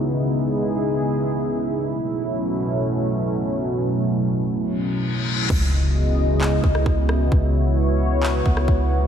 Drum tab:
CC |----------------|----------------|----------------|x---------------|
CP |----------------|----------------|----------------|--------x-------|
SD |----------------|----------------|----------------|-----------r--r-|
BD |----------------|----------------|----------------|o---------o-o---|

CC |----------------|
CP |--------x-------|
SD |-----------r----|
BD |o---------o-o---|